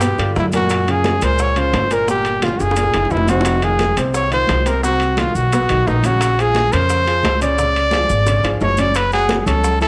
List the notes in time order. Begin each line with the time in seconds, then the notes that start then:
Already playing: G2 G4
0.01 B2 B3 B4, high bongo, high conga, high timbale, maracas
0.18 G2 D3 D4 F4, high bongo, high conga, high timbale, maracas
0.36 F#2 E4, high bongo, low bongo, high conga, low timbale, maracas
0.52 A#2 A#3 F#4 A#4, high bongo, high conga, high timbale, maracas
0.69 high bongo, high conga, high timbale, maracas
0.87 C#3 C#4 F4 G#4, high conga, high timbale, maracas
1.04 high bongo, high conga, high timbale, low timbale, maracas
1.22 C#2 A#2 A#3 A#4 C5, high conga, high timbale, maracas
1.38 C#5, high bongo, high conga, maracas
1.56 C#3 C#4 F4 C5, high conga, high timbale, maracas
1.73 G1, high bongo, low bongo, high conga, high timbale, low timbale, maracas
1.91 A#2 A#3 A#4, high conga, high timbale, maracas
2.08 A#2 A#3 G4 A#4, high bongo, high conga, maracas
2.25 high bongo, high conga, high timbale, maracas
2.42 C#3 C#4 F4, high bongo, high conga, high timbale, low timbale, maracas
2.60 F#1 G#4, high bongo, high conga, maracas
2.71 high bongo
2.76 A#2 A#3 A#4, high conga, high timbale, maracas
2.83 high bongo
2.94 F#1 C#3 C#4 E4, high bongo, high conga, high timbale, maracas
3.05 low bongo
3.10 F1 E4, high conga, low timbale, maracas
3.17 low bongo
3.27 C3 C4 F#4 C5, high conga, high timbale, maracas
3.41 low bongo
3.45 high bongo, high conga, high timbale, maracas
3.62 D#3 D#4 F4 G#4, high conga, high timbale, maracas
3.79 high bongo, high conga, high timbale, low timbale, maracas
3.96 C2 C3 C4 C5, high conga, high timbale, maracas
4.13 C#5, high bongo, high conga, maracas
4.31 D#3 D#4 F4 C5, high conga, high timbale, maracas
4.47 C2, high bongo, low bongo, high conga, high timbale, low timbale, maracas
4.65 C3 C4 A#4 C5, high conga, high timbale, maracas
4.82 C3 C4 F#4 C5, high bongo, high conga, maracas
5.00 high bongo, high conga, high timbale, maracas
5.17 D#3 D#4 F4 F#4, high bongo, high conga, high timbale, low timbale, maracas
5.34 B1 F#4, high conga, maracas
5.52 B2 B3 B4, high bongo, high conga, high timbale, maracas
5.69 B1 D#3 D#4 F#4, high bongo, high conga, high timbale, maracas
5.86 A#1 D#4, high bongo, low bongo, high conga, low timbale, maracas
6.03 C#3 C#4 F#4 C#5, high bongo, high conga, high timbale, maracas
6.21 high bongo, high timbale, maracas
6.38 F3 F4 G#4, high conga, high timbale, maracas
6.55 high bongo, high conga, high timbale, low timbale, maracas
6.72 F2 C#3 C#4 A#4 C5, high conga, high timbale, maracas
6.89 high bongo, high conga, maracas
7.06 F3 F4 G#4, high conga, high timbale, maracas
7.23 C#2, high bongo, low bongo, high conga, high timbale, low timbale, maracas
7.40 C#3 C#4 C#5 D5, high conga, high timbale, maracas
7.57 C#3 C#4 D5, high bongo, high conga, maracas
7.75 high bongo, high conga, high timbale, maracas
7.91 F3 F4 G#4, high bongo, high conga, high timbale, low timbale, maracas
8.09 G#1, high conga, maracas
8.26 C#3 C#4 C#5, high bongo, high conga, high timbale, maracas
8.43 G#1 F3 F4 G#4, low bongo, high conga, high timbale, maracas
8.60 F#1 C#5, low bongo, high conga, low timbale, maracas
8.77 C#3 C#4 C#5 D5, low bongo, high conga, high timbale, maracas
8.94 B4, high bongo, high conga, high timbale, maracas
9.12 F#3 F#4 G#4 F#5, high conga, high timbale, maracas
9.29 high bongo, high conga, high timbale, low timbale, maracas
9.39 G#4
9.46 C#2 C#4 A4 C#5 C#6, high conga, low conga, high timbale, maracas
9.63 high bongo, high conga, maracas
9.81 E3 E4 A4 E5, high conga, high timbale, maracas